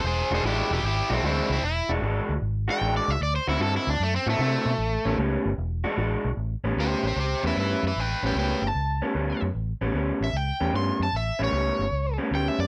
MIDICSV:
0, 0, Header, 1, 4, 480
1, 0, Start_track
1, 0, Tempo, 395778
1, 51, Time_signature, 4, 2, 24, 8
1, 15366, End_track
2, 0, Start_track
2, 0, Title_t, "Overdriven electric guitar"
2, 0, Program_c, 0, 29
2, 79, Note_on_c, 0, 68, 68
2, 89, Note_on_c, 0, 72, 86
2, 369, Note_off_c, 0, 68, 0
2, 386, Note_off_c, 0, 72, 0
2, 415, Note_on_c, 0, 68, 65
2, 426, Note_on_c, 0, 72, 77
2, 540, Note_off_c, 0, 68, 0
2, 551, Note_off_c, 0, 72, 0
2, 560, Note_on_c, 0, 64, 76
2, 568, Note_on_c, 0, 67, 88
2, 849, Note_off_c, 0, 64, 0
2, 866, Note_off_c, 0, 67, 0
2, 883, Note_on_c, 0, 64, 71
2, 895, Note_on_c, 0, 67, 88
2, 1014, Note_off_c, 0, 64, 0
2, 1026, Note_off_c, 0, 67, 0
2, 1045, Note_on_c, 0, 64, 81
2, 1054, Note_on_c, 0, 67, 89
2, 1332, Note_off_c, 0, 64, 0
2, 1372, Note_on_c, 0, 60, 69
2, 1382, Note_off_c, 0, 67, 0
2, 1382, Note_on_c, 0, 64, 84
2, 1508, Note_off_c, 0, 60, 0
2, 1509, Note_off_c, 0, 64, 0
2, 1522, Note_on_c, 0, 60, 80
2, 1529, Note_on_c, 0, 64, 72
2, 1811, Note_off_c, 0, 60, 0
2, 1824, Note_off_c, 0, 64, 0
2, 1846, Note_on_c, 0, 60, 78
2, 1851, Note_on_c, 0, 64, 93
2, 1975, Note_off_c, 0, 60, 0
2, 1983, Note_off_c, 0, 64, 0
2, 2003, Note_on_c, 0, 64, 103
2, 2303, Note_off_c, 0, 64, 0
2, 3280, Note_on_c, 0, 79, 89
2, 3575, Note_off_c, 0, 79, 0
2, 3600, Note_on_c, 0, 74, 81
2, 3765, Note_off_c, 0, 74, 0
2, 3765, Note_on_c, 0, 76, 90
2, 3902, Note_off_c, 0, 76, 0
2, 3916, Note_on_c, 0, 74, 80
2, 4057, Note_off_c, 0, 74, 0
2, 4071, Note_on_c, 0, 72, 86
2, 4215, Note_off_c, 0, 72, 0
2, 4236, Note_on_c, 0, 64, 83
2, 4378, Note_off_c, 0, 64, 0
2, 4397, Note_on_c, 0, 69, 92
2, 4538, Note_off_c, 0, 69, 0
2, 4569, Note_on_c, 0, 64, 94
2, 4704, Note_off_c, 0, 64, 0
2, 4727, Note_on_c, 0, 62, 87
2, 4863, Note_off_c, 0, 62, 0
2, 4887, Note_on_c, 0, 57, 92
2, 5023, Note_off_c, 0, 57, 0
2, 5042, Note_on_c, 0, 60, 100
2, 5181, Note_off_c, 0, 60, 0
2, 5211, Note_on_c, 0, 57, 82
2, 5345, Note_off_c, 0, 57, 0
2, 5368, Note_on_c, 0, 57, 102
2, 6280, Note_off_c, 0, 57, 0
2, 8246, Note_on_c, 0, 67, 70
2, 8256, Note_on_c, 0, 72, 81
2, 8550, Note_off_c, 0, 72, 0
2, 8554, Note_off_c, 0, 67, 0
2, 8575, Note_on_c, 0, 67, 65
2, 8580, Note_on_c, 0, 72, 72
2, 8700, Note_off_c, 0, 67, 0
2, 8708, Note_off_c, 0, 72, 0
2, 8725, Note_on_c, 0, 67, 64
2, 8736, Note_on_c, 0, 72, 75
2, 9012, Note_off_c, 0, 67, 0
2, 9030, Note_off_c, 0, 72, 0
2, 9058, Note_on_c, 0, 71, 61
2, 9065, Note_on_c, 0, 76, 74
2, 9183, Note_off_c, 0, 71, 0
2, 9189, Note_off_c, 0, 76, 0
2, 9213, Note_on_c, 0, 71, 65
2, 9220, Note_on_c, 0, 76, 67
2, 9498, Note_off_c, 0, 71, 0
2, 9511, Note_off_c, 0, 76, 0
2, 9550, Note_on_c, 0, 71, 70
2, 9555, Note_on_c, 0, 76, 82
2, 9668, Note_off_c, 0, 71, 0
2, 9695, Note_on_c, 0, 71, 69
2, 9704, Note_off_c, 0, 76, 0
2, 9704, Note_on_c, 0, 79, 60
2, 9992, Note_off_c, 0, 79, 0
2, 10000, Note_off_c, 0, 71, 0
2, 10019, Note_on_c, 0, 71, 60
2, 10028, Note_on_c, 0, 79, 72
2, 10143, Note_off_c, 0, 71, 0
2, 10153, Note_off_c, 0, 79, 0
2, 10175, Note_on_c, 0, 71, 70
2, 10183, Note_on_c, 0, 79, 76
2, 10458, Note_off_c, 0, 71, 0
2, 10515, Note_off_c, 0, 79, 0
2, 10515, Note_on_c, 0, 81, 79
2, 11420, Note_off_c, 0, 81, 0
2, 12416, Note_on_c, 0, 76, 78
2, 12548, Note_off_c, 0, 76, 0
2, 12574, Note_on_c, 0, 79, 73
2, 13020, Note_off_c, 0, 79, 0
2, 13050, Note_on_c, 0, 84, 82
2, 13349, Note_off_c, 0, 84, 0
2, 13379, Note_on_c, 0, 81, 80
2, 13510, Note_off_c, 0, 81, 0
2, 13539, Note_on_c, 0, 76, 77
2, 13834, Note_off_c, 0, 76, 0
2, 13869, Note_on_c, 0, 73, 84
2, 14777, Note_off_c, 0, 73, 0
2, 14977, Note_on_c, 0, 79, 78
2, 15138, Note_off_c, 0, 79, 0
2, 15138, Note_on_c, 0, 76, 63
2, 15272, Note_off_c, 0, 76, 0
2, 15281, Note_on_c, 0, 74, 76
2, 15366, Note_off_c, 0, 74, 0
2, 15366, End_track
3, 0, Start_track
3, 0, Title_t, "Clean electric guitar"
3, 0, Program_c, 1, 27
3, 381, Note_on_c, 1, 66, 88
3, 386, Note_on_c, 1, 62, 89
3, 394, Note_on_c, 1, 56, 84
3, 398, Note_on_c, 1, 52, 80
3, 520, Note_off_c, 1, 52, 0
3, 522, Note_off_c, 1, 56, 0
3, 530, Note_off_c, 1, 62, 0
3, 533, Note_off_c, 1, 66, 0
3, 535, Note_on_c, 1, 52, 74
3, 536, Note_on_c, 1, 56, 75
3, 544, Note_on_c, 1, 62, 78
3, 546, Note_on_c, 1, 66, 72
3, 905, Note_off_c, 1, 52, 0
3, 905, Note_off_c, 1, 56, 0
3, 909, Note_off_c, 1, 62, 0
3, 910, Note_off_c, 1, 66, 0
3, 1329, Note_on_c, 1, 66, 88
3, 1337, Note_on_c, 1, 62, 79
3, 1341, Note_on_c, 1, 56, 90
3, 1345, Note_on_c, 1, 52, 84
3, 1468, Note_off_c, 1, 52, 0
3, 1477, Note_off_c, 1, 56, 0
3, 1479, Note_off_c, 1, 62, 0
3, 1482, Note_on_c, 1, 52, 66
3, 1486, Note_off_c, 1, 66, 0
3, 1492, Note_on_c, 1, 56, 64
3, 1493, Note_on_c, 1, 62, 80
3, 1501, Note_on_c, 1, 66, 80
3, 1858, Note_off_c, 1, 52, 0
3, 1862, Note_off_c, 1, 56, 0
3, 1863, Note_off_c, 1, 62, 0
3, 1867, Note_off_c, 1, 66, 0
3, 2295, Note_on_c, 1, 66, 97
3, 2299, Note_on_c, 1, 62, 104
3, 2304, Note_on_c, 1, 56, 88
3, 2308, Note_on_c, 1, 52, 76
3, 2432, Note_off_c, 1, 52, 0
3, 2440, Note_off_c, 1, 56, 0
3, 2444, Note_off_c, 1, 62, 0
3, 2447, Note_on_c, 1, 52, 79
3, 2449, Note_off_c, 1, 66, 0
3, 2454, Note_on_c, 1, 56, 80
3, 2458, Note_on_c, 1, 62, 74
3, 2462, Note_on_c, 1, 66, 83
3, 2820, Note_off_c, 1, 52, 0
3, 2824, Note_off_c, 1, 56, 0
3, 2826, Note_off_c, 1, 62, 0
3, 2828, Note_off_c, 1, 66, 0
3, 3248, Note_on_c, 1, 66, 103
3, 3253, Note_on_c, 1, 62, 86
3, 3257, Note_on_c, 1, 56, 84
3, 3259, Note_on_c, 1, 52, 80
3, 3388, Note_off_c, 1, 52, 0
3, 3394, Note_off_c, 1, 56, 0
3, 3396, Note_off_c, 1, 62, 0
3, 3403, Note_on_c, 1, 52, 68
3, 3405, Note_off_c, 1, 66, 0
3, 3409, Note_on_c, 1, 56, 70
3, 3411, Note_on_c, 1, 62, 75
3, 3418, Note_on_c, 1, 66, 75
3, 3777, Note_off_c, 1, 52, 0
3, 3781, Note_off_c, 1, 56, 0
3, 3782, Note_off_c, 1, 62, 0
3, 3785, Note_off_c, 1, 66, 0
3, 4214, Note_on_c, 1, 66, 99
3, 4218, Note_on_c, 1, 64, 93
3, 4224, Note_on_c, 1, 60, 79
3, 4228, Note_on_c, 1, 50, 87
3, 4348, Note_off_c, 1, 50, 0
3, 4350, Note_off_c, 1, 60, 0
3, 4356, Note_off_c, 1, 64, 0
3, 4362, Note_off_c, 1, 66, 0
3, 4362, Note_on_c, 1, 50, 78
3, 4364, Note_on_c, 1, 60, 74
3, 4370, Note_on_c, 1, 64, 80
3, 4376, Note_on_c, 1, 66, 80
3, 4737, Note_off_c, 1, 50, 0
3, 4738, Note_off_c, 1, 60, 0
3, 4741, Note_off_c, 1, 64, 0
3, 4744, Note_off_c, 1, 66, 0
3, 5173, Note_on_c, 1, 66, 90
3, 5182, Note_on_c, 1, 64, 103
3, 5184, Note_on_c, 1, 60, 94
3, 5191, Note_on_c, 1, 50, 85
3, 5310, Note_off_c, 1, 50, 0
3, 5320, Note_off_c, 1, 60, 0
3, 5325, Note_off_c, 1, 64, 0
3, 5325, Note_on_c, 1, 50, 72
3, 5327, Note_off_c, 1, 66, 0
3, 5335, Note_on_c, 1, 60, 82
3, 5339, Note_on_c, 1, 64, 81
3, 5343, Note_on_c, 1, 66, 77
3, 5699, Note_off_c, 1, 50, 0
3, 5704, Note_off_c, 1, 60, 0
3, 5706, Note_off_c, 1, 64, 0
3, 5708, Note_off_c, 1, 66, 0
3, 6128, Note_on_c, 1, 61, 99
3, 6132, Note_on_c, 1, 59, 81
3, 6143, Note_on_c, 1, 55, 91
3, 6144, Note_on_c, 1, 45, 81
3, 6269, Note_off_c, 1, 45, 0
3, 6274, Note_off_c, 1, 55, 0
3, 6278, Note_off_c, 1, 59, 0
3, 6282, Note_off_c, 1, 61, 0
3, 6284, Note_on_c, 1, 45, 78
3, 6289, Note_on_c, 1, 55, 79
3, 6292, Note_on_c, 1, 59, 70
3, 6297, Note_on_c, 1, 61, 82
3, 6658, Note_off_c, 1, 45, 0
3, 6661, Note_off_c, 1, 55, 0
3, 6662, Note_off_c, 1, 59, 0
3, 6665, Note_off_c, 1, 61, 0
3, 7082, Note_on_c, 1, 66, 112
3, 7087, Note_on_c, 1, 62, 101
3, 7089, Note_on_c, 1, 56, 92
3, 7096, Note_on_c, 1, 52, 89
3, 7225, Note_off_c, 1, 52, 0
3, 7231, Note_off_c, 1, 56, 0
3, 7238, Note_off_c, 1, 62, 0
3, 7239, Note_off_c, 1, 66, 0
3, 7239, Note_on_c, 1, 52, 72
3, 7246, Note_on_c, 1, 56, 75
3, 7252, Note_on_c, 1, 62, 73
3, 7254, Note_on_c, 1, 66, 75
3, 7616, Note_off_c, 1, 52, 0
3, 7620, Note_off_c, 1, 56, 0
3, 7623, Note_off_c, 1, 62, 0
3, 7624, Note_off_c, 1, 66, 0
3, 8054, Note_on_c, 1, 61, 79
3, 8060, Note_on_c, 1, 59, 87
3, 8066, Note_on_c, 1, 55, 77
3, 8069, Note_on_c, 1, 45, 63
3, 8184, Note_off_c, 1, 45, 0
3, 8195, Note_off_c, 1, 55, 0
3, 8199, Note_off_c, 1, 61, 0
3, 8199, Note_on_c, 1, 45, 66
3, 8200, Note_off_c, 1, 59, 0
3, 8209, Note_on_c, 1, 55, 70
3, 8214, Note_on_c, 1, 61, 68
3, 8215, Note_on_c, 1, 59, 75
3, 8577, Note_off_c, 1, 45, 0
3, 8582, Note_off_c, 1, 55, 0
3, 8584, Note_off_c, 1, 61, 0
3, 8585, Note_off_c, 1, 59, 0
3, 9020, Note_on_c, 1, 61, 86
3, 9024, Note_on_c, 1, 59, 82
3, 9028, Note_on_c, 1, 55, 71
3, 9034, Note_on_c, 1, 45, 79
3, 9155, Note_off_c, 1, 45, 0
3, 9160, Note_off_c, 1, 55, 0
3, 9170, Note_off_c, 1, 59, 0
3, 9170, Note_on_c, 1, 45, 58
3, 9172, Note_off_c, 1, 61, 0
3, 9175, Note_on_c, 1, 55, 66
3, 9184, Note_on_c, 1, 59, 69
3, 9187, Note_on_c, 1, 61, 65
3, 9543, Note_off_c, 1, 45, 0
3, 9545, Note_off_c, 1, 55, 0
3, 9550, Note_off_c, 1, 59, 0
3, 9551, Note_off_c, 1, 61, 0
3, 9985, Note_on_c, 1, 61, 92
3, 9992, Note_on_c, 1, 59, 75
3, 9995, Note_on_c, 1, 55, 77
3, 10000, Note_on_c, 1, 45, 69
3, 10114, Note_off_c, 1, 45, 0
3, 10115, Note_off_c, 1, 55, 0
3, 10123, Note_off_c, 1, 59, 0
3, 10125, Note_off_c, 1, 61, 0
3, 10128, Note_on_c, 1, 45, 69
3, 10130, Note_on_c, 1, 55, 60
3, 10138, Note_on_c, 1, 59, 74
3, 10140, Note_on_c, 1, 61, 63
3, 10503, Note_off_c, 1, 45, 0
3, 10504, Note_off_c, 1, 55, 0
3, 10507, Note_off_c, 1, 59, 0
3, 10508, Note_off_c, 1, 61, 0
3, 10938, Note_on_c, 1, 61, 100
3, 10944, Note_on_c, 1, 59, 80
3, 10948, Note_on_c, 1, 55, 86
3, 10952, Note_on_c, 1, 45, 69
3, 11081, Note_off_c, 1, 45, 0
3, 11088, Note_off_c, 1, 55, 0
3, 11091, Note_off_c, 1, 59, 0
3, 11092, Note_off_c, 1, 61, 0
3, 11095, Note_on_c, 1, 45, 66
3, 11102, Note_on_c, 1, 55, 62
3, 11106, Note_on_c, 1, 59, 68
3, 11111, Note_on_c, 1, 61, 78
3, 11467, Note_off_c, 1, 45, 0
3, 11470, Note_off_c, 1, 55, 0
3, 11472, Note_off_c, 1, 59, 0
3, 11474, Note_off_c, 1, 61, 0
3, 11902, Note_on_c, 1, 61, 84
3, 11907, Note_on_c, 1, 59, 81
3, 11913, Note_on_c, 1, 55, 83
3, 11918, Note_on_c, 1, 45, 67
3, 12044, Note_off_c, 1, 45, 0
3, 12049, Note_off_c, 1, 55, 0
3, 12052, Note_off_c, 1, 59, 0
3, 12055, Note_off_c, 1, 61, 0
3, 12058, Note_on_c, 1, 45, 64
3, 12064, Note_on_c, 1, 55, 69
3, 12067, Note_on_c, 1, 59, 71
3, 12070, Note_on_c, 1, 61, 78
3, 12429, Note_off_c, 1, 45, 0
3, 12431, Note_off_c, 1, 55, 0
3, 12433, Note_off_c, 1, 59, 0
3, 12434, Note_off_c, 1, 61, 0
3, 12861, Note_on_c, 1, 61, 96
3, 12868, Note_on_c, 1, 59, 81
3, 12870, Note_on_c, 1, 55, 90
3, 12876, Note_on_c, 1, 45, 79
3, 13002, Note_off_c, 1, 45, 0
3, 13006, Note_off_c, 1, 55, 0
3, 13010, Note_off_c, 1, 59, 0
3, 13015, Note_off_c, 1, 61, 0
3, 13017, Note_on_c, 1, 45, 61
3, 13021, Note_on_c, 1, 55, 67
3, 13025, Note_on_c, 1, 59, 66
3, 13030, Note_on_c, 1, 61, 70
3, 13388, Note_off_c, 1, 45, 0
3, 13390, Note_off_c, 1, 55, 0
3, 13392, Note_off_c, 1, 59, 0
3, 13395, Note_off_c, 1, 61, 0
3, 13814, Note_on_c, 1, 61, 96
3, 13818, Note_on_c, 1, 59, 76
3, 13824, Note_on_c, 1, 55, 81
3, 13832, Note_on_c, 1, 45, 69
3, 13961, Note_off_c, 1, 45, 0
3, 13962, Note_off_c, 1, 55, 0
3, 13969, Note_off_c, 1, 59, 0
3, 13971, Note_off_c, 1, 61, 0
3, 13975, Note_on_c, 1, 45, 70
3, 13977, Note_on_c, 1, 55, 73
3, 13983, Note_on_c, 1, 59, 68
3, 13987, Note_on_c, 1, 61, 70
3, 14347, Note_off_c, 1, 45, 0
3, 14348, Note_off_c, 1, 55, 0
3, 14351, Note_off_c, 1, 59, 0
3, 14353, Note_off_c, 1, 61, 0
3, 14775, Note_on_c, 1, 61, 91
3, 14780, Note_on_c, 1, 59, 75
3, 14787, Note_on_c, 1, 55, 76
3, 14792, Note_on_c, 1, 45, 67
3, 14918, Note_off_c, 1, 45, 0
3, 14925, Note_off_c, 1, 55, 0
3, 14925, Note_off_c, 1, 59, 0
3, 14932, Note_off_c, 1, 61, 0
3, 14932, Note_on_c, 1, 45, 56
3, 14939, Note_on_c, 1, 55, 69
3, 14940, Note_on_c, 1, 59, 56
3, 14945, Note_on_c, 1, 61, 67
3, 15306, Note_off_c, 1, 45, 0
3, 15310, Note_off_c, 1, 55, 0
3, 15310, Note_off_c, 1, 59, 0
3, 15312, Note_off_c, 1, 61, 0
3, 15366, End_track
4, 0, Start_track
4, 0, Title_t, "Fingered electric bass"
4, 0, Program_c, 2, 33
4, 50, Note_on_c, 2, 28, 101
4, 256, Note_off_c, 2, 28, 0
4, 370, Note_on_c, 2, 28, 86
4, 469, Note_off_c, 2, 28, 0
4, 526, Note_on_c, 2, 33, 89
4, 734, Note_off_c, 2, 33, 0
4, 858, Note_on_c, 2, 28, 92
4, 955, Note_off_c, 2, 28, 0
4, 1009, Note_on_c, 2, 32, 90
4, 1216, Note_off_c, 2, 32, 0
4, 1335, Note_on_c, 2, 35, 92
4, 1433, Note_off_c, 2, 35, 0
4, 1491, Note_on_c, 2, 38, 91
4, 1697, Note_off_c, 2, 38, 0
4, 1814, Note_on_c, 2, 37, 99
4, 1912, Note_off_c, 2, 37, 0
4, 1967, Note_on_c, 2, 28, 90
4, 2174, Note_off_c, 2, 28, 0
4, 2292, Note_on_c, 2, 28, 88
4, 2391, Note_off_c, 2, 28, 0
4, 2449, Note_on_c, 2, 32, 90
4, 2655, Note_off_c, 2, 32, 0
4, 2775, Note_on_c, 2, 38, 86
4, 2873, Note_off_c, 2, 38, 0
4, 2931, Note_on_c, 2, 32, 97
4, 3233, Note_off_c, 2, 32, 0
4, 3411, Note_on_c, 2, 33, 89
4, 3617, Note_off_c, 2, 33, 0
4, 3736, Note_on_c, 2, 37, 101
4, 3833, Note_off_c, 2, 37, 0
4, 3890, Note_on_c, 2, 38, 95
4, 4095, Note_off_c, 2, 38, 0
4, 4216, Note_on_c, 2, 38, 92
4, 4313, Note_off_c, 2, 38, 0
4, 4364, Note_on_c, 2, 43, 89
4, 4571, Note_off_c, 2, 43, 0
4, 4695, Note_on_c, 2, 38, 89
4, 4792, Note_off_c, 2, 38, 0
4, 4852, Note_on_c, 2, 42, 97
4, 5057, Note_off_c, 2, 42, 0
4, 5171, Note_on_c, 2, 45, 99
4, 5269, Note_off_c, 2, 45, 0
4, 5322, Note_on_c, 2, 48, 86
4, 5530, Note_off_c, 2, 48, 0
4, 5647, Note_on_c, 2, 47, 99
4, 5746, Note_off_c, 2, 47, 0
4, 5801, Note_on_c, 2, 33, 104
4, 6009, Note_off_c, 2, 33, 0
4, 6129, Note_on_c, 2, 33, 93
4, 6228, Note_off_c, 2, 33, 0
4, 6286, Note_on_c, 2, 37, 94
4, 6493, Note_off_c, 2, 37, 0
4, 6615, Note_on_c, 2, 31, 91
4, 6712, Note_off_c, 2, 31, 0
4, 6766, Note_on_c, 2, 28, 99
4, 7071, Note_off_c, 2, 28, 0
4, 7246, Note_on_c, 2, 33, 89
4, 7453, Note_off_c, 2, 33, 0
4, 7574, Note_on_c, 2, 35, 107
4, 7672, Note_off_c, 2, 35, 0
4, 7726, Note_on_c, 2, 33, 88
4, 7933, Note_off_c, 2, 33, 0
4, 8049, Note_on_c, 2, 33, 72
4, 8148, Note_off_c, 2, 33, 0
4, 8204, Note_on_c, 2, 38, 75
4, 8413, Note_off_c, 2, 38, 0
4, 8529, Note_on_c, 2, 33, 77
4, 8628, Note_off_c, 2, 33, 0
4, 8686, Note_on_c, 2, 37, 86
4, 8894, Note_off_c, 2, 37, 0
4, 9015, Note_on_c, 2, 40, 88
4, 9113, Note_off_c, 2, 40, 0
4, 9174, Note_on_c, 2, 43, 83
4, 9380, Note_off_c, 2, 43, 0
4, 9495, Note_on_c, 2, 42, 84
4, 9593, Note_off_c, 2, 42, 0
4, 9656, Note_on_c, 2, 33, 85
4, 9861, Note_off_c, 2, 33, 0
4, 9977, Note_on_c, 2, 33, 77
4, 10075, Note_off_c, 2, 33, 0
4, 10131, Note_on_c, 2, 37, 78
4, 10338, Note_off_c, 2, 37, 0
4, 10452, Note_on_c, 2, 31, 78
4, 10551, Note_off_c, 2, 31, 0
4, 10612, Note_on_c, 2, 37, 91
4, 10916, Note_off_c, 2, 37, 0
4, 11094, Note_on_c, 2, 38, 79
4, 11300, Note_off_c, 2, 38, 0
4, 11426, Note_on_c, 2, 42, 95
4, 11521, Note_off_c, 2, 42, 0
4, 11579, Note_on_c, 2, 33, 89
4, 11784, Note_off_c, 2, 33, 0
4, 11899, Note_on_c, 2, 33, 84
4, 11996, Note_off_c, 2, 33, 0
4, 12052, Note_on_c, 2, 38, 80
4, 12259, Note_off_c, 2, 38, 0
4, 12378, Note_on_c, 2, 33, 80
4, 12476, Note_off_c, 2, 33, 0
4, 12532, Note_on_c, 2, 37, 92
4, 12739, Note_off_c, 2, 37, 0
4, 12865, Note_on_c, 2, 40, 89
4, 12961, Note_off_c, 2, 40, 0
4, 13013, Note_on_c, 2, 43, 89
4, 13220, Note_off_c, 2, 43, 0
4, 13336, Note_on_c, 2, 42, 93
4, 13435, Note_off_c, 2, 42, 0
4, 13497, Note_on_c, 2, 33, 90
4, 13703, Note_off_c, 2, 33, 0
4, 13820, Note_on_c, 2, 33, 76
4, 13918, Note_off_c, 2, 33, 0
4, 13977, Note_on_c, 2, 37, 85
4, 14183, Note_off_c, 2, 37, 0
4, 14299, Note_on_c, 2, 31, 73
4, 14397, Note_off_c, 2, 31, 0
4, 14453, Note_on_c, 2, 37, 85
4, 14758, Note_off_c, 2, 37, 0
4, 14931, Note_on_c, 2, 38, 87
4, 15139, Note_off_c, 2, 38, 0
4, 15262, Note_on_c, 2, 42, 87
4, 15366, Note_off_c, 2, 42, 0
4, 15366, End_track
0, 0, End_of_file